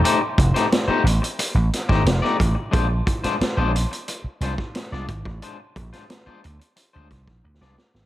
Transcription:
<<
  \new Staff \with { instrumentName = "Clean electric guitar" } { \time 4/4 \key bes \major \tempo 4 = 89 <a ees' g' c''>16 r8 <a ees' g' c''>16 r16 <a ees' g' c''>16 r4 r16 <a ees' g' c''>16 r16 <a ees' g' d''>16 r8 | <aes d' f' c''>16 r8 <aes d' f' c''>16 r16 <aes d' f' c''>16 r4 <aes d' f' c''>16 r8 <aes d' f' d''>16 r8 | <aes d' f' c''>16 r8 <aes d' f' c''>16 r16 <aes d' f' c''>16 r8. <aes d' f' c''>16 r8. <aes d' f' d''>16 r8 | }
  \new Staff \with { instrumentName = "Slap bass" } { \clef bass \time 4/4 \key bes \major r8 f,,16 r8. a,,16 r8 a,,16 r16 aes,,16 f,,16 r16 a,,16 r16 | bes,,8 r8. bes,,8 r8. c,16 r8 c,16 aes,,16 a,,16 | r8 bes,,16 r8. d,16 r8 d,16 c,16 bes,,16 d,16 c,16 r16 aes,,16 | }
  \new DrumStaff \with { instrumentName = "Drums" } \drummode { \time 4/4 hh8 <hh bd>16 <hh sn>16 <hh sn>8 hh16 hh16 hh8 <hh sn>16 <bd sn>16 <hh sn>16 sn16 <hh bd>8 | <hh bd>8 <hh bd>16 <hh sn>16 <hh sn>8 hh16 hh16 hh8 <hh sn>16 <bd sn>16 <hh sn>16 sn16 <hh bd>16 bd16 | hh8 <hh bd>16 <hh sn>16 <hh sn>8 hh16 hh16 hh8 <hh bd sn>16 <bd sn>16 r16 sn16 sn16 sn16 | }
>>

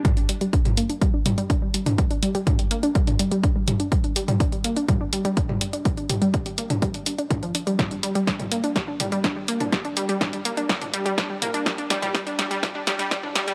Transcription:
<<
  \new Staff \with { instrumentName = "Synth pluck" } { \clef bass \time 4/4 \key g \minor \tempo 4 = 124 g16 d'16 g16 g16 d'16 g16 bes16 d'16 g16 d'16 g16 g16 d'16 g16 g16 d'16 | g16 d'16 g16 g16 d'16 g16 bes16 d'16 g16 d'16 g16 g16 d'16 g16 g16 d'16 | g16 d'16 g16 g16 d'16 g16 bes16 d'16 g16 d'16 g16 g16 d'16 g16 g16 d'16 | g16 d'16 g16 g16 d'16 g16 bes16 d'16 g16 d'16 d'16 d'16 d'16 f16 d'16 g16 |
g16 d'16 g16 g16 d'16 g16 bes16 d'16 g16 d'16 g16 g16 d'16 g16 bes16 d'16 | g16 d'16 g16 g16 d'16 g16 bes16 d'16 g16 d'16 g16 g16 d'16 g16 bes16 d'16 | g16 d'16 g16 g16 g16 d'16 g16 g16 g16 d'16 g16 g16 g16 d'16 g16 g16 | }
  \new DrumStaff \with { instrumentName = "Drums" } \drummode { \time 4/4 <hh bd toml>16 hh16 hho16 hh16 <hh bd>16 <hh toml>16 hho16 hh16 <hh bd>8 <hho toml>16 hh16 <hh bd>8 hho16 <hh toml>16 | <hh bd>16 hh16 hho16 hh16 <hh bd toml>16 hho16 hho16 hh16 <hh bd>16 <hho toml>16 hho16 hh16 <hh bd>8 <hho toml>16 hh16 | <hh bd>16 hh16 hho16 <hh toml>16 <hh bd>16 hh16 hho16 hh16 <hh bd toml>8 hho16 hh16 <hh bd>16 toml16 hho16 hh16 | <hh bd>16 hh16 <hho toml>16 hh16 <hh bd>16 hho16 hho16 <hh toml>16 <hh bd>16 hho16 hho16 hh16 <hh bd toml>16 hh16 hho16 hh16 |
<hh bd sn toml>16 hh16 hho16 hh16 <hh bd sn>16 <hh toml>16 hho16 hh16 <hh bd sn>8 <hho toml>16 hh16 <hh bd sn>8 hho16 <hh toml>16 | <hh bd sn>16 hh16 hho16 hh16 <hh bd sn toml>16 hho16 hho16 hh16 <hh bd sn>16 <hho toml>16 hho16 hh16 <hh bd sn>8 <hho toml>16 hh16 | <hh bd sn>16 hh16 <hho sn>16 <hh toml>16 <hh bd sn>16 hh16 <hho sn>16 hh16 <hh bd sn toml>8 <hho sn>16 hh16 <hh bd sn>16 toml16 <hho sn>16 hh16 | }
>>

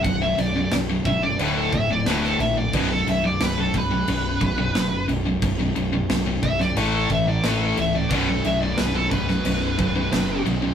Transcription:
<<
  \new Staff \with { instrumentName = "Lead electric guitar" } { \time 4/4 \key b \minor \tempo 4 = 89 fis''16 e''16 d''8 r8 e''16 d''16 b'16 a'16 e''16 d''16 b'16 a'16 e''16 d''16 | b'16 a'16 e''16 d''16 b'16 a'16 b'2 r8 | r4. e''16 d''16 b'16 a'16 e''16 d''16 b'16 a'16 e''16 d''16 | b'16 a'16 e''16 d''16 b'16 a'16 b'2 r8 | }
  \new Staff \with { instrumentName = "Distorted electric guitar" } { \clef bass \time 4/4 \key b \minor <b,, fis,>16 <b,, fis,>16 <b,, fis,>16 <b,, fis,>16 <b,, fis,>16 <b,, fis,>16 <b,, fis,>16 <b,, fis,>16 <d, a, d>8 <d, a,>16 <d, a,>16 <d, a, d>8 <d, a,>16 <d, a,>16 | <b,, fis, b,>16 <b,, fis,>16 <b,, fis,>16 <b,, fis,>16 <b,, fis,>16 <b,, fis,>16 <b,, fis,>16 <b,, fis,>16 <b,, fis,>8 <b,, fis,>16 <b,, fis,>16 <b,, fis,>8 <b,, fis,>16 <b,, fis,>16 | <b,, fis,>16 <b,, fis,>16 <b,, fis,>16 <b,, fis,>16 <b,, fis,>16 <b,, fis,>16 <b,, fis,>16 <b,, fis,>16 <a, e a>8 <a, e>16 <a, e>16 <a, e a>8 <a, e>16 <a, e>16 | <b,, fis, b,>16 <b,, fis,>16 <b,, fis,>16 <b,, fis,>16 <b,, fis,>16 <b,, fis,>16 <b,, fis,>16 <b,, fis,>16 <b,, fis,>8 <b,, fis,>16 <b,, fis,>16 <b,, fis,>8 <b,, fis,>16 <b,, fis,>16 | }
  \new Staff \with { instrumentName = "Distorted electric guitar" } { \clef bass \time 4/4 \key b \minor <b,, fis,>16 <b,, fis,>16 <b,, fis,>16 <b,, fis,>16 <b,, fis,>16 <b,, fis,>16 <b,, fis,>16 <b,, fis,>16 <d, a, d>8 <d, a,>16 <d, a,>16 <d, a, d>8 <d, a,>16 <d, a,>16 | <b,, fis, b,>16 <b,, fis,>16 <b,, fis,>16 <b,, fis,>16 <b,, fis,>16 <b,, fis,>16 <b,, fis,>16 <b,, fis,>16 <b,, fis,>8 <b,, fis,>16 <b,, fis,>16 <b,, fis,>8 <b,, fis,>16 <b,, fis,>16 | <b,, fis,>16 <b,, fis,>16 <b,, fis,>16 <b,, fis,>16 <b,, fis,>16 <b,, fis,>16 <b,, fis,>16 <b,, fis,>16 <a, e a>8 <a, e>16 <a, e>16 <a, e a>8 <a, e>16 <a, e>16 | <b,, fis, b,>16 <b,, fis,>16 <b,, fis,>16 <b,, fis,>16 <b,, fis,>16 <b,, fis,>16 <b,, fis,>16 <b,, fis,>16 <b,, fis,>8 <b,, fis,>16 <b,, fis,>16 <b,, fis,>8 <b,, fis,>16 <b,, fis,>16 | }
  \new Staff \with { instrumentName = "Distorted electric guitar" } { \clef bass \time 4/4 \key b \minor r1 | r1 | r1 | <b,, fis, b,>4. <b,, fis, b,>4. <b,, fis, b,>4 | }
  \new Staff \with { instrumentName = "Picked electric bass" } { \clef bass \time 4/4 \key b \minor b,,,8 b,,,8 b,,,8 e,,8 d,,8 d,,8 d,,8 ais,,8 | b,,,8 b,,,8 b,,,8 b,,,8 b,,,8 b,,,8 fis,,8 b,,,8 | b,,,8 b,,,8 b,,,8 b,,,8 a,,8 a,,8 a,,8 cis,,8 | b,,,8 b,,,8 b,,,8 b,,,8 b,,,8 b,,,8 fis,,8 b,,,8 | }
  \new DrumStaff \with { instrumentName = "Drums" } \drummode { \time 4/4 <cymc bd>8 cymc8 <cymc sn>8 <cymc bd>8 cymc8 <cymc bd>8 <cymc sn>16 sn16 cymc8 | <cymc bd>8 cymc8 <cymc sn>8 <cymc bd>8 cymc8 <cymc bd>8 <cymc sn>8 cymc8 | <cymc bd>8 cymc8 <cymc sn>8 <cymc bd>16 sn16 cymc8 <cymc bd>8 <cymc sn>8 cymc8 | <cymc bd>8 cymc8 <cymc sn>8 <cymc bd>16 sn16 cymc8 <cymc bd>8 <cymc sn>8 cymc8 | }
>>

